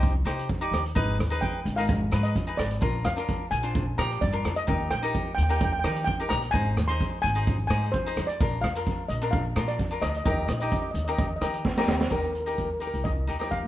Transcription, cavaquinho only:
0.00 0.12 D#4 medium
0.00 0.12 G4 medium
0.00 0.12 C5 medium
0.25 0.47 D#4 medium
0.25 0.47 G4 medium
0.25 0.48 C5 medium
0.61 0.82 D#4 medium
0.61 0.82 G4 medium
0.61 0.83 D5 medium
0.95 1.17 D#4 medium
0.95 1.17 G#4 medium
0.95 1.17 B4 loud
1.30 1.59 D#4 medium
1.30 1.59 G#4 medium
1.30 1.59 B4 medium
1.78 1.99 D#4 medium
1.78 1.99 G#4 medium
1.78 1.99 A#4 medium
2.11 2.33 D#4 medium
2.11 2.33 G#4 medium
2.11 2.34 B4 medium
2.47 2.68 D#4 medium
2.47 2.69 G#4 medium
2.47 2.69 B4 medium
2.81 3.03 D4 medium
2.81 3.03 F4 medium
2.81 3.03 A#4 medium
3.16 3.45 D4 medium
3.16 3.45 F4 medium
3.16 3.45 A#4 medium
3.63 3.84 D4 medium
3.63 3.85 F4 medium
3.63 3.85 C5 medium
3.98 4.19 D4 medium
3.98 4.20 F4 medium
3.98 4.20 G4 medium
4.33 4.54 D4 medium
4.33 4.54 F4 medium
4.33 4.54 A#4 medium
4.67 4.89 D#4 medium
4.67 4.89 G4 medium
4.67 4.89 A#4 medium
5.02 5.31 D#4 medium
5.02 5.31 G4 medium
5.02 5.31 A#4 medium
5.49 5.70 D#4 medium
5.49 5.71 G4 medium
5.49 5.71 A#4 medium
5.84 6.05 D#4 medium
5.84 6.06 G4 medium
5.84 6.06 A#4 medium
6.20 6.41 D#4 medium
6.20 6.41 G4 medium
6.20 6.41 A#4 medium
6.53 6.75 D#4 medium
6.53 6.75 G#4 medium
6.53 6.76 C5 medium
6.89 7.17 D#4 medium
6.89 7.17 G#4 medium
6.89 7.18 C5 medium
7.35 7.56 D#4 medium
7.35 7.57 G#4 medium
7.35 7.57 C5 medium
7.70 7.91 D#4 medium
7.70 7.91 G#4 medium
7.70 7.91 C5 medium
8.06 8.27 D#4 medium
8.06 8.27 G#4 medium
8.06 8.27 C5 medium
8.40 8.61 D4 medium
8.40 8.61 F4 medium
8.40 8.62 A#4 medium
8.75 9.03 D4 medium
8.75 9.03 F4 medium
8.75 9.04 A#4 medium
9.22 9.43 D4 medium
9.22 9.43 F4 medium
9.22 9.43 A#4 medium
9.56 9.77 D4 medium
9.56 9.77 F4 medium
9.56 9.78 A#4 medium
9.91 10.12 D4 medium
9.91 10.12 F4 medium
9.91 10.13 A#4 medium
10.25 10.47 D#4 medium
10.25 10.47 G4 medium
10.25 10.47 A#4 medium
10.61 10.89 D#4 medium
10.61 10.89 G4 medium
10.61 10.89 A#4 medium
11.08 11.28 D#4 medium
11.08 11.29 G4 medium
11.08 11.29 A#4 medium
11.41 11.63 D#4 medium
11.41 11.63 G4 medium
11.41 11.63 A#4 medium
11.78 11.98 D#4 medium
11.78 11.99 G4 medium
11.78 11.99 A#4 loud
12.10 12.32 D#4 medium
12.10 12.32 G4 soft
12.10 12.33 A#4 medium
12.46 12.68 D#4 medium
12.46 12.68 G4 medium
12.46 12.68 A#4 medium
12.80 13.09 D#4 medium
12.80 13.09 G4 soft
12.80 13.10 A#4 medium
13.27 13.35 D#4 medium
13.27 13.36 G4 medium
13.27 13.36 A#4 medium
13.39 13.68 D#4 medium
13.39 13.68 G4 medium
13.39 13.68 A#4 medium

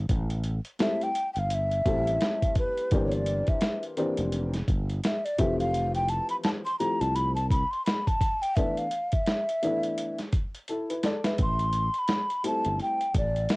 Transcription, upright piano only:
0.79 1.06 G3 medium
0.79 1.06 A3 medium
0.79 1.07 C4 medium
0.79 1.07 E4 medium
0.79 1.07 A4 medium
1.86 2.86 G3 medium
1.86 2.86 A3 medium
1.86 2.86 C4 medium
1.86 2.86 E4 medium
1.86 2.87 A4 medium
2.92 3.92 E3 medium
2.92 3.92 A#3 medium
2.92 3.92 C4 medium
2.92 3.93 D4 medium
2.92 3.93 G4 medium
3.97 4.49 E3 medium
3.97 4.49 A#3 medium
3.97 4.50 C4 medium
3.97 4.50 D4 medium
3.97 4.50 G4 medium
5.38 6.60 E3 medium
5.38 6.59 F3 medium
5.38 6.59 A3 medium
5.38 6.60 C4 medium
5.38 6.60 G4 medium
6.80 7.32 F3 medium
6.80 7.32 A3 medium
6.80 7.32 C4 medium
6.80 7.32 E4 medium
6.80 7.32 G4 medium
8.56 8.83 E3 medium
8.56 8.83 A3 medium
8.56 8.83 B3 medium
8.56 8.84 D4 medium
8.56 8.84 A4 medium
9.62 10.14 E3 medium
9.62 10.14 A3 medium
9.62 10.15 B3 medium
9.62 10.15 D4 medium
9.62 10.15 E4 medium
10.69 10.89 E4 medium
10.69 10.88 A4 medium
10.89 11.04 E4 soft
10.89 11.03 B4 medium
11.04 11.24 A4 medium
11.04 11.24 D5 medium
11.24 11.58 B4 medium
11.24 11.58 E5 medium
12.44 12.96 G3 medium
12.44 12.96 A3 medium
12.44 12.97 C4 soft
12.44 12.97 E4 medium
12.44 12.97 A4 medium

